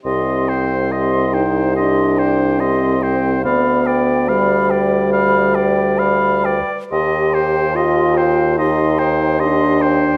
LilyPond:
<<
  \new Staff \with { instrumentName = "Flute" } { \time 4/4 \key c \minor \tempo 4 = 71 c'''8 g''8 c'''8 g''8 c'''8 g''8 c'''8 g''8 | b''8 g''8 b''8 g''8 b''8 g''8 b''8 g''8 | c'''8 g''8 c'''8 g''8 c'''8 g''8 c'''8 g''8 | }
  \new Staff \with { instrumentName = "Oboe" } { \time 4/4 \key c \minor ees''8 c''8 ees''8 c''8 ees''8 c''8 ees''8 c''8 | f''8 d''8 f''8 d''8 f''8 d''8 f''8 d''8 | ees''8 c''8 ees''8 c''8 ees''8 c''8 ees''8 c''8 | }
  \new Staff \with { instrumentName = "Clarinet" } { \time 4/4 \key c \minor g'8 c''8 g'8 c''8 g'8 c''8 g'8 c''8 | d''8 b'8 d''8 b'8 d''8 b'8 d''8 b'8 | g'8 c''8 g'8 c''8 g'8 c''8 g'8 c''8 | }
  \new Staff \with { instrumentName = "French horn" } { \time 4/4 \key c \minor c'4. ees'8 d'4 c'4 | b4 g2~ g8 r8 | g'4 f'4 ees'4 d'4 | }
  \new Staff \with { instrumentName = "Bassoon" } { \clef bass \time 4/4 \key c \minor c,1 | d,2.~ d,8 r8 | ees,1 | }
>>